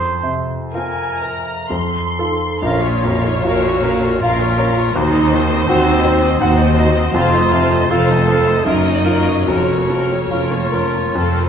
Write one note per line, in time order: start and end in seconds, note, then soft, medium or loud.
0.00 0.55 F2 medium
0.00 1.67 F2 soft
0.00 0.39 C5 medium
0.23 1.03 C3 soft
0.73 1.48 C4 soft
0.73 1.52 F4 soft
0.73 1.47 A#4 soft
0.73 1.67 A#4 soft
0.73 1.19 G#5 soft
1.21 1.71 A#4 soft
1.21 1.70 A#5 soft
1.70 2.60 F2 soft
1.70 2.47 F2 soft
1.70 2.43 C4 soft
1.70 2.42 A4 soft
1.70 2.63 C6 medium
2.19 2.65 D#4 medium
2.19 2.59 F4 soft
2.19 2.59 A4 soft
2.62 4.91 A#1 medium
2.62 3.36 A#1 medium
2.62 3.35 A#2 medium
2.62 2.83 C#4 soft
2.62 3.09 F4 medium
2.62 2.83 A#4 soft
2.62 4.18 C#5 medium
2.62 2.81 F5 soft
2.83 3.04 A#3 soft
2.83 3.04 F4 soft
2.83 3.04 C#5 soft
3.04 3.68 F2 soft
3.04 3.25 C#4 soft
3.04 3.25 A#4 soft
3.04 3.24 F5 soft
3.08 3.19 F#4 medium
3.17 3.29 F4 medium
3.25 3.45 A#3 soft
3.25 3.37 D#4 soft
3.25 3.45 F4 soft
3.25 3.45 C#5 soft
3.36 3.43 F4 soft
3.44 4.13 A#1 medium
3.44 4.13 A#2 medium
3.44 3.63 C#4 medium
3.44 4.06 F4 soft
3.44 4.23 F#4 medium
3.44 3.63 A#4 soft
3.44 3.63 F5 soft
3.64 3.84 A#3 soft
3.64 3.84 F4 soft
3.64 3.83 C#5 soft
3.83 4.02 C#4 soft
3.83 4.02 A#4 soft
3.83 4.44 A#4 soft
3.83 4.03 F5 soft
4.02 4.21 A#3 soft
4.02 4.21 F4 soft
4.02 4.22 C#5 soft
4.21 4.87 A#1 medium
4.21 4.87 A#2 medium
4.21 4.39 C#4 soft
4.21 4.95 F4 medium
4.21 4.39 A#4 soft
4.21 4.94 A#4 medium
4.21 4.39 F5 soft
4.21 4.81 F5 medium
4.40 4.59 A#3 soft
4.40 4.59 F4 soft
4.40 4.59 C#5 soft
4.58 4.77 C#4 soft
4.58 4.77 A#4 soft
4.58 4.96 C#5 medium
4.58 4.78 F5 medium
4.76 4.95 A#3 soft
4.76 4.95 F4 soft
4.76 4.96 C#5 soft
4.95 5.60 D#2 medium
4.95 7.10 D#2 medium
4.95 5.60 D#2 medium
4.95 5.12 D#4 medium
4.95 5.70 D#4 loud
4.95 5.12 F#4 medium
4.95 6.39 C5 medium
4.95 5.14 C5 soft
5.13 5.32 C4 soft
5.13 5.30 D#4 soft
5.13 5.33 D#5 medium
5.31 5.91 D#3 medium
5.31 5.48 D#4 medium
5.31 5.50 F#4 medium
5.31 5.51 C5 medium
5.50 5.68 C4 medium
5.50 5.66 D#4 soft
5.50 5.69 D#5 soft
5.67 6.32 D#2 medium
5.67 6.40 C4 medium
5.67 5.84 D#4 medium
5.67 5.84 F#4 medium
5.67 6.26 F#4 medium
5.67 5.85 C5 soft
5.86 6.04 C4 medium
5.86 6.03 D#4 medium
5.86 6.05 D#5 medium
6.04 6.20 D#4 medium
6.04 6.22 F#4 medium
6.04 6.63 C5 medium
6.04 6.23 C5 medium
6.22 6.40 C4 medium
6.22 6.39 D#4 medium
6.22 6.41 D#5 medium
6.40 7.05 D#2 medium
6.40 6.57 D#4 medium
6.40 6.76 D#4 medium
6.40 6.57 F#4 medium
6.40 8.62 C5 medium
6.40 6.58 C5 medium
6.40 7.00 F#5 medium
6.58 6.77 C4 soft
6.58 6.76 D#4 soft
6.58 6.77 D#5 medium
6.77 6.94 D#4 soft
6.77 6.96 F#4 medium
6.77 6.95 C5 medium
6.77 7.15 D#5 medium
6.95 7.12 C4 soft
6.95 7.14 D#4 soft
6.95 7.14 D#5 medium
7.13 7.81 F1 medium
7.13 7.81 F2 medium
7.13 8.62 F2 medium
7.13 7.31 C4 medium
7.13 7.31 F4 medium
7.13 7.92 F4 loud
7.13 7.31 F5 medium
7.31 7.51 A3 soft
7.31 7.51 D#4 soft
7.31 7.52 D#5 medium
7.51 8.13 C3 medium
7.51 7.71 C4 medium
7.51 7.71 F4 medium
7.51 7.71 F5 soft
7.69 7.89 A3 soft
7.69 7.89 D#4 soft
7.69 7.90 D#5 soft
7.88 8.57 F1 medium
7.88 8.57 F2 medium
7.88 8.07 C4 medium
7.88 8.07 F4 medium
7.88 8.51 F4 medium
7.88 8.66 A4 medium
7.88 8.08 F5 soft
8.08 8.28 A3 soft
8.08 8.27 D#4 medium
8.08 8.28 D#5 soft
8.27 8.46 C4 soft
8.27 8.47 F4 soft
8.27 8.66 A4 medium
8.27 8.47 F5 soft
8.46 8.65 A3 soft
8.46 8.65 D#4 soft
8.46 8.66 D#5 soft
8.64 9.38 F#1 medium
8.64 9.45 F#2 medium
8.64 9.38 F#2 medium
8.64 8.84 C#4 soft
8.64 9.49 D#4 medium
8.64 8.84 F4 soft
8.64 8.84 A#4 medium
8.64 9.48 D#5 medium
8.84 9.06 A#3 soft
8.84 9.06 F#4 soft
8.84 9.05 C#5 soft
9.05 9.27 C#4 soft
9.05 9.43 F4 soft
9.05 9.27 F4 soft
9.05 9.26 A#4 soft
9.05 9.43 A#4 soft
9.26 9.48 A#3 soft
9.26 9.48 F#4 soft
9.26 9.47 C#5 soft
9.47 10.21 F1 medium
9.47 11.12 F2 soft
9.47 10.21 F2 medium
9.47 9.68 C#4 soft
9.47 9.67 F4 soft
9.47 10.23 F#4 medium
9.47 9.67 A#4 soft
9.47 11.49 C#5 medium
9.69 9.90 A#3 soft
9.69 9.88 C#4 soft
9.69 9.90 C#5 soft
9.89 10.56 F3 soft
9.89 10.09 C#4 soft
9.89 10.10 F4 soft
9.89 10.10 A#4 soft
10.10 10.31 A#3 soft
10.10 10.29 C#4 soft
10.10 10.31 C#5 soft
10.24 10.32 F#4 soft
10.30 11.05 F1 medium
10.30 11.05 F2 soft
10.30 10.50 C#4 soft
10.30 11.49 F4 medium
10.30 10.50 F4 soft
10.30 10.98 F4 soft
10.30 10.51 A#4 soft
10.52 10.73 A#3 soft
10.52 10.72 C#4 soft
10.52 10.73 C#5 soft
10.72 10.94 C#4 soft
10.72 10.94 F4 soft
10.72 11.15 A#4 soft
10.72 10.95 A#4 soft
10.95 11.16 A#3 soft
10.95 11.16 C#4 soft
10.95 11.16 C#5 soft
11.15 11.49 F1 medium
11.15 11.49 F2 medium
11.15 11.36 C4 soft
11.15 11.36 F4 soft
11.15 11.36 A4 soft
11.38 11.49 A3 soft
11.38 11.49 A4 soft
11.38 11.49 C5 soft